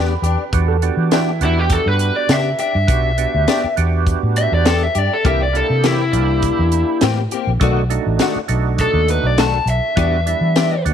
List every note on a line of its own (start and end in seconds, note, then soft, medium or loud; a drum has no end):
0.00 0.14 E2 medium
0.00 0.12 B3 medium
0.00 0.13 D4 medium
0.00 0.13 G4 medium
0.00 0.66 B4 medium
0.22 0.35 E2 medium
0.22 0.43 D4 soft
0.22 0.42 G4 medium
0.22 closed hi-hat medium
0.52 0.89 E2 medium
0.52 0.77 B3 medium
0.52 0.77 D4 medium
0.52 0.77 F#4 medium
0.52 0.77 G4 medium
0.52 kick medium
0.52 closed hi-hat medium
0.68 1.10 A4 medium
0.82 1.30 B3 medium
0.82 1.31 D4 medium
0.82 1.30 F#4 medium
0.82 1.31 G4 medium
0.82 closed hi-hat medium
0.97 1.42 E3 medium
1.11 1.30 B3 medium
1.11 1.31 D4 medium
1.11 1.41 E4 medium
1.11 1.31 G4 medium
1.11 snare loud
1.11 closed hi-hat medium
1.41 1.77 E2 medium
1.41 2.36 B3 medium
1.41 2.37 D4 medium
1.41 1.59 E4 medium
1.41 2.36 F#4 medium
1.41 2.37 G4 medium
1.41 closed hi-hat medium
1.59 1.72 G4 medium
1.70 1.88 A4 medium
1.70 kick medium
1.70 closed hi-hat medium
1.86 2.10 G2 medium
1.86 2.16 B4 medium
1.99 closed hi-hat medium
2.17 2.32 D5 medium
2.29 2.53 C#3 medium
2.29 2.48 B3 medium
2.29 2.49 D4 medium
2.29 2.49 G4 medium
2.29 2.59 E5 medium
2.29 snare loud
2.29 closed hi-hat medium
2.59 2.79 D4 soft
2.59 2.78 G4 soft
2.59 3.74 E5 medium
2.59 closed hi-hat medium
2.75 2.86 G2 medium
2.87 3.25 B1 medium
2.87 3.12 B3 medium
2.87 3.12 D4 medium
2.87 3.13 F#4 medium
2.87 3.12 G4 medium
2.87 kick medium
2.87 closed hi-hat medium
3.18 3.66 B3 medium
3.18 3.66 D4 medium
3.18 3.67 F#4 medium
3.18 3.66 G4 medium
3.18 closed hi-hat medium
3.34 3.45 D2 medium
3.48 3.66 B3 medium
3.48 3.67 D4 medium
3.48 3.67 G4 medium
3.48 snare medium
3.48 closed hi-hat medium
3.64 muted fingered electric bass stroke soft
3.77 4.14 E2 medium
3.77 4.72 B3 medium
3.77 4.72 D4 medium
3.77 4.72 F#4 medium
3.77 4.72 G4 medium
3.77 closed hi-hat medium
4.07 kick medium
4.07 closed hi-hat medium
4.23 4.46 A2 medium
4.36 4.52 E5 medium
4.36 closed hi-hat medium
4.52 4.86 E2 medium
4.52 4.66 D5 medium
4.65 4.84 B3 medium
4.65 4.85 D4 medium
4.65 4.85 G4 medium
4.65 4.81 A4 medium
4.65 snare loud
4.65 closed hi-hat medium
4.83 4.98 E5 medium
4.95 5.08 G2 medium
4.95 5.15 D4 soft
4.95 5.14 G4 soft
4.95 5.12 D5 medium
4.95 closed hi-hat medium
5.13 5.26 A4 medium
5.25 5.61 C2 medium
5.25 5.43 E3 medium
5.25 5.49 A#3 medium
5.25 5.43 A#3 medium
5.25 5.44 C4 medium
5.25 5.49 D4 medium
5.25 5.49 E4 medium
5.25 5.49 G4 medium
5.25 5.44 G4 medium
5.25 5.41 E5 loud
5.25 kick medium
5.25 closed hi-hat medium
5.43 5.55 D5 medium
5.53 6.02 A#3 medium
5.53 6.02 D4 medium
5.53 6.02 E4 medium
5.53 6.02 G4 medium
5.53 5.84 A4 medium
5.53 closed hi-hat medium
5.70 6.14 C3 medium
5.84 6.02 E3 medium
5.84 6.03 A#3 medium
5.84 6.03 C4 medium
5.84 6.99 E4 medium
5.84 6.03 G4 medium
5.84 snare medium
5.84 closed hi-hat medium
6.12 6.49 C2 medium
6.12 7.07 A#3 medium
6.12 7.08 D4 medium
6.12 7.08 E4 medium
6.12 7.08 G4 medium
6.12 closed hi-hat medium
6.42 kick medium
6.42 closed hi-hat medium
6.59 6.82 E2 medium
6.72 closed hi-hat medium
7.01 7.26 A2 medium
7.01 7.20 E3 medium
7.01 7.21 A#3 medium
7.01 7.21 C4 medium
7.01 7.21 G4 medium
7.01 snare loud
7.01 closed hi-hat medium
7.31 7.51 A#3 soft
7.31 7.51 C4 soft
7.31 7.50 G4 medium
7.31 closed hi-hat medium
7.47 7.58 A#1 medium
7.60 7.97 B1 medium
7.60 7.80 D#3 medium
7.60 7.84 A3 medium
7.60 7.80 A3 medium
7.60 7.84 D4 medium
7.60 7.80 D4 medium
7.60 7.84 D#4 medium
7.60 7.85 F#4 medium
7.60 7.81 F#4 medium
7.60 kick loud
7.60 closed hi-hat medium
7.90 8.38 A3 medium
7.90 8.38 D4 medium
7.90 8.39 D#4 medium
7.90 8.39 F#4 medium
7.90 closed hi-hat medium
8.06 8.17 A1 medium
8.19 8.38 D#3 medium
8.19 8.39 A3 medium
8.19 8.39 D4 medium
8.19 8.39 F#4 medium
8.19 snare medium
8.19 closed hi-hat medium
8.36 muted fingered electric bass stroke soft
8.48 8.85 B1 medium
8.48 9.44 A3 medium
8.48 9.44 D4 medium
8.48 9.44 D#4 medium
8.48 9.44 F#4 medium
8.48 closed hi-hat medium
8.78 9.09 A4 medium
8.78 kick medium
8.78 closed hi-hat medium
8.93 9.17 D#2 medium
9.08 9.25 B4 medium
9.08 closed hi-hat medium
9.23 9.58 B1 medium
9.23 9.39 D5 medium
9.38 9.56 D#3 medium
9.38 9.57 A3 medium
9.38 9.57 D4 medium
9.38 9.57 F#4 medium
9.38 9.67 A5 medium
9.38 snare loud
9.38 closed hi-hat medium
9.66 9.79 B1 medium
9.66 closed hi-hat medium
9.70 10.83 E5 medium
9.96 10.33 E2 medium
9.96 10.15 E3 medium
9.96 10.21 G3 medium
9.96 10.20 B3 medium
9.96 10.16 B3 medium
9.96 10.21 D4 medium
9.96 10.16 D4 medium
9.96 10.21 F#4 medium
9.96 10.16 G4 medium
9.96 kick loud
9.96 closed hi-hat medium
10.26 10.74 G3 medium
10.26 10.75 B3 medium
10.26 10.75 D4 medium
10.26 10.75 E4 medium
10.26 closed hi-hat medium
10.41 10.87 E3 medium
10.56 10.74 E3 medium
10.56 10.75 B3 medium
10.56 10.75 D4 medium
10.56 10.75 G4 medium
10.56 snare loud
10.56 closed hi-hat medium
10.85 10.94 E2 medium
10.85 10.94 G3 medium
10.85 10.94 B3 medium
10.85 10.94 D4 medium
10.85 10.94 F#4 medium
10.85 closed hi-hat medium